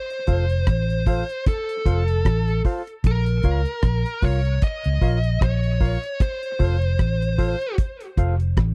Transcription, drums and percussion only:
0.10 closed hi-hat soft
0.27 kick medium
0.27 closed hi-hat medium
0.50 closed hi-hat soft
0.67 kick loud
0.67 cross-stick loud
0.67 closed hi-hat medium
0.90 closed hi-hat soft
1.06 kick medium
1.06 open hi-hat medium
1.29 closed hi-hat soft
1.46 kick loud
1.46 closed hi-hat medium
1.69 closed hi-hat medium
1.86 kick medium
1.86 closed hi-hat medium
2.08 closed hi-hat medium
2.25 kick medium
2.25 cross-stick medium
2.25 closed hi-hat medium
2.48 closed hi-hat soft
2.65 kick medium
2.65 open hi-hat medium
2.87 closed hi-hat medium
3.04 kick loud
3.04 closed hi-hat loud
3.26 closed hi-hat soft
3.43 kick medium
3.43 closed hi-hat medium
3.65 closed hi-hat medium
3.83 kick loud
3.83 cross-stick loud
3.83 closed hi-hat medium
4.06 closed hi-hat medium
4.22 kick medium
4.22 open hi-hat medium
4.45 closed hi-hat medium
4.62 kick loud
4.62 closed hi-hat medium
4.84 closed hi-hat medium
5.01 kick medium
5.01 open hi-hat soft
5.24 closed hi-hat soft
5.41 kick loud
5.41 cross-stick loud
5.41 closed hi-hat medium
5.64 closed hi-hat soft
5.81 kick medium
5.81 open hi-hat medium
6.03 closed hi-hat medium
6.20 kick loud
6.20 closed hi-hat loud
6.43 closed hi-hat medium
6.59 kick medium
6.59 open hi-hat medium
6.82 closed hi-hat medium
6.99 kick loud
6.99 cross-stick medium
6.99 closed hi-hat medium
7.22 closed hi-hat medium
7.38 kick medium
7.38 open hi-hat medium
7.61 closed hi-hat soft
7.78 kick loud
7.78 closed hi-hat medium
8.01 closed hi-hat medium
8.17 kick medium
8.17 closed hi-hat medium
8.40 closed hi-hat medium
8.57 kick medium
8.57 cross-stick loud
8.57 closed hi-hat medium

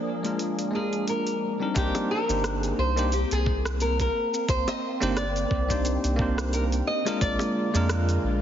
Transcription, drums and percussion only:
0.25 open hi-hat soft
0.39 open hi-hat medium
0.59 open hi-hat soft
0.93 open hi-hat soft
1.08 open hi-hat medium
1.27 open hi-hat soft
1.76 kick loud
1.76 open hi-hat medium
1.76 shaker medium
1.95 open hi-hat soft
1.95 high bongo medium
1.95 shaker soft
2.29 open hi-hat soft
2.29 shaker medium
2.44 cross-stick medium
2.44 open hi-hat medium
2.44 shaker medium
2.63 open hi-hat soft
2.63 shaker soft
2.97 open hi-hat soft
2.97 shaker medium
3.12 open hi-hat medium
3.12 shaker medium
3.31 open hi-hat soft
3.31 shaker soft
3.46 kick loud
3.65 cross-stick medium
3.65 shaker medium
3.80 open hi-hat medium
3.80 shaker medium
4.00 kick medium
4.00 open hi-hat soft
4.00 shaker soft
4.34 shaker medium
4.48 kick loud
4.48 open hi-hat medium
4.48 shaker medium
4.68 open hi-hat soft
4.68 high bongo medium
4.68 shaker soft
5.02 open hi-hat soft
5.02 high bongo soft
5.02 shaker medium
5.17 cross-stick medium
5.17 open hi-hat medium
5.17 shaker medium
5.36 open hi-hat soft
5.36 shaker soft
5.51 kick loud
5.70 kick medium
5.70 open hi-hat soft
5.70 shaker medium
5.85 open hi-hat medium
5.85 shaker medium
6.04 open hi-hat soft
6.04 shaker soft
6.19 kick loud
6.38 cross-stick medium
6.38 shaker medium
6.53 open hi-hat medium
6.53 shaker medium
6.72 open hi-hat soft
6.72 shaker soft
7.06 open hi-hat soft
7.06 high bongo medium
7.06 shaker medium
7.21 kick loud
7.21 open hi-hat medium
7.21 shaker medium
7.39 open hi-hat soft
7.39 high bongo medium
7.39 shaker soft
7.75 open hi-hat soft
7.75 shaker medium
7.89 cross-stick medium
7.89 open hi-hat medium
7.89 shaker medium
8.09 open hi-hat soft
8.09 shaker soft

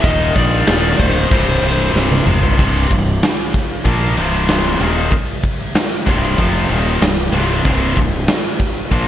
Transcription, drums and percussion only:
0.03 kick loud
0.03 crash medium
0.36 kick medium
0.36 crash medium
0.67 snare loud
0.67 crash medium
0.99 kick medium
0.99 crash medium
1.31 kick loud
1.31 crash medium
1.48 snare soft
1.63 crash medium
1.96 snare medium
2.11 high tom medium
2.27 mid tom loud
2.43 floor tom medium
2.59 kick loud
2.59 crash loud
2.91 kick medium
2.91 ride medium
3.23 snare loud
3.23 ride loud
3.54 kick medium
3.54 ride medium
3.85 kick medium
3.85 ride medium
4.17 ride medium
4.48 snare loud
4.48 ride medium
4.80 ride medium
5.11 kick loud
5.11 ride medium
5.43 kick medium
5.43 ride medium
5.75 snare loud
5.75 ride loud
6.07 kick medium
6.07 ride medium
6.38 kick medium
6.38 ride loud
6.69 ride medium
7.02 snare loud
7.02 ride loud
7.33 ride medium
7.65 kick loud
7.65 ride loud
7.97 kick medium
7.97 ride medium
8.28 snare loud
8.28 ride loud
8.59 kick medium
8.59 ride medium
8.91 kick medium
8.91 ride loud

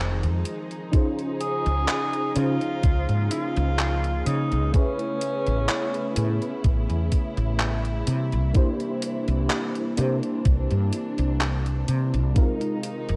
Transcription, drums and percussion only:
0.23 closed hi-hat soft
0.45 closed hi-hat medium
0.71 closed hi-hat soft
0.93 kick loud
0.93 closed hi-hat medium
1.19 closed hi-hat soft
1.41 closed hi-hat medium
1.66 closed hi-hat soft
1.88 clap loud
1.88 closed hi-hat medium
2.13 closed hi-hat soft
2.36 closed hi-hat medium
2.61 closed hi-hat soft
2.83 kick loud
2.83 closed hi-hat medium
3.09 closed hi-hat soft
3.31 closed hi-hat medium
3.56 closed hi-hat soft
3.79 clap loud
3.79 closed hi-hat medium
4.04 closed hi-hat soft
4.26 closed hi-hat medium
4.52 closed hi-hat soft
4.74 kick loud
4.74 closed hi-hat medium
4.99 closed hi-hat soft
5.21 closed hi-hat medium
5.47 closed hi-hat soft
5.69 clap loud
5.69 closed hi-hat medium
5.94 closed hi-hat soft
6.16 closed hi-hat medium
6.42 closed hi-hat soft
6.64 kick loud
6.64 closed hi-hat medium
6.90 closed hi-hat soft
7.12 kick medium
7.12 closed hi-hat medium
7.37 closed hi-hat soft
7.59 clap loud
7.59 closed hi-hat medium
7.85 closed hi-hat soft
8.07 closed hi-hat medium
8.32 closed hi-hat soft
8.54 kick loud
8.54 closed hi-hat medium
8.80 closed hi-hat soft
9.02 closed hi-hat medium
9.28 closed hi-hat soft
9.50 clap loud
9.50 closed hi-hat medium
9.75 closed hi-hat soft
9.97 closed hi-hat medium
10.23 closed hi-hat soft
10.45 kick loud
10.45 closed hi-hat medium
10.71 closed hi-hat soft
10.93 closed hi-hat medium
11.18 closed hi-hat soft
11.41 clap loud
11.41 closed hi-hat medium
11.66 closed hi-hat soft
11.88 closed hi-hat medium
12.14 closed hi-hat soft
12.36 kick loud
12.36 closed hi-hat medium
12.61 closed hi-hat soft
12.83 closed hi-hat medium
13.09 closed hi-hat soft

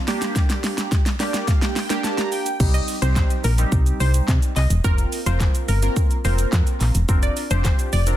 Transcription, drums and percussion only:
0.08 snare loud
0.08 open hi-hat medium
0.08 shaker medium
0.22 snare loud
0.22 closed hi-hat medium
0.22 shaker medium
0.36 kick loud
0.36 snare loud
0.36 shaker medium
0.50 snare loud
0.50 closed hi-hat medium
0.50 shaker medium
0.64 snare loud
0.64 open hi-hat medium
0.64 shaker medium
0.78 snare loud
0.78 closed hi-hat medium
0.78 shaker medium
0.92 kick loud
0.92 snare loud
0.92 shaker medium
1.06 snare loud
1.06 closed hi-hat medium
1.06 shaker medium
1.20 snare loud
1.20 open hi-hat medium
1.20 shaker medium
1.34 snare loud
1.34 closed hi-hat medium
1.34 shaker medium
1.48 kick loud
1.48 snare loud
1.48 shaker medium
1.62 snare loud
1.62 closed hi-hat soft
1.62 shaker soft
1.76 snare loud
1.76 open hi-hat medium
1.76 shaker medium
1.90 snare loud
1.90 closed hi-hat medium
1.90 shaker medium
2.04 snare loud
2.04 shaker medium
2.18 snare loud
2.18 closed hi-hat medium
2.18 shaker medium
2.32 open hi-hat medium
2.32 shaker medium
2.46 closed hi-hat medium
2.46 shaker medium
2.60 kick loud
2.60 crash loud
2.60 shaker medium
2.74 closed hi-hat medium
2.74 shaker medium
2.88 open hi-hat medium
2.88 shaker medium
3.02 closed hi-hat medium
3.02 shaker medium
3.16 kick loud
3.16 snare loud
3.16 clap loud
3.16 shaker medium
3.30 closed hi-hat medium
3.30 shaker medium
3.44 open hi-hat medium
3.44 shaker medium
3.58 closed hi-hat medium
3.58 shaker medium
3.72 kick loud
3.72 shaker medium
3.86 closed hi-hat soft
3.86 shaker soft
4.00 open hi-hat medium
4.00 shaker medium
4.14 closed hi-hat medium
4.14 shaker medium
4.28 kick loud
4.28 snare loud
4.28 clap loud
4.28 shaker medium
4.42 closed hi-hat medium
4.42 shaker medium
4.56 clap medium
4.56 open hi-hat medium
4.56 shaker medium
4.70 closed hi-hat medium
4.70 shaker medium
4.84 kick loud
4.84 shaker medium
4.98 closed hi-hat medium
4.98 shaker medium
5.12 open hi-hat medium
5.12 shaker medium
5.26 closed hi-hat medium
5.26 shaker medium
5.40 kick loud
5.40 snare loud
5.40 clap loud
5.40 shaker medium
5.55 closed hi-hat medium
5.55 shaker medium
5.68 open hi-hat medium
5.68 shaker medium
5.83 closed hi-hat medium
5.83 shaker medium
5.96 kick loud
5.96 shaker medium
6.11 closed hi-hat soft
6.11 shaker soft
6.25 open hi-hat medium
6.25 shaker medium
6.39 closed hi-hat medium
6.39 shaker medium
6.53 kick loud
6.53 snare loud
6.53 clap loud
6.53 shaker medium
6.67 closed hi-hat medium
6.67 shaker medium
6.81 clap medium
6.81 open hi-hat medium
6.81 shaker medium
6.95 closed hi-hat medium
6.95 shaker medium
7.09 kick loud
7.09 shaker medium
7.23 closed hi-hat medium
7.23 shaker medium
7.37 open hi-hat medium
7.37 shaker medium
7.51 closed hi-hat medium
7.51 shaker medium
7.65 kick loud
7.65 snare loud
7.65 clap loud
7.65 shaker medium
7.79 closed hi-hat medium
7.79 shaker medium
7.93 open hi-hat medium
7.93 shaker medium
8.07 closed hi-hat medium
8.07 shaker medium

